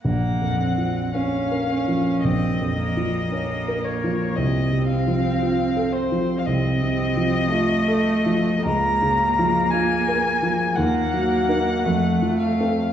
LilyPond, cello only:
\new Staff \with { instrumentName = "Cello" } { \time 4/4 \key bes \minor \tempo 4 = 56 bes8 c'8 des'8 des'8 c'8 bes8 bes4 | c'2 c'4 a4 | bes2 bes4 a4 | }